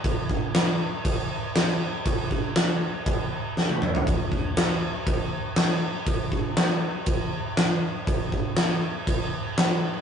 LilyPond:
\new DrumStaff \with { instrumentName = "Drums" } \drummode { \time 4/4 \tempo 4 = 120 <cymc bd>8 bd8 <cymc sn>4 <cymc bd>4 <cymc sn>4 | <cymc bd>8 bd8 <cymc sn>4 <cymc bd>4 sn16 tommh16 toml16 tomfh16 | <cymc bd>8 bd8 <cymc sn>4 <cymc bd>4 <cymc sn>4 | <cymc bd>8 bd8 <cymc sn>4 <cymc bd>4 <cymc sn>4 |
<cymc bd>8 bd8 <cymc sn>4 <cymc bd>4 <cymc sn>4 | }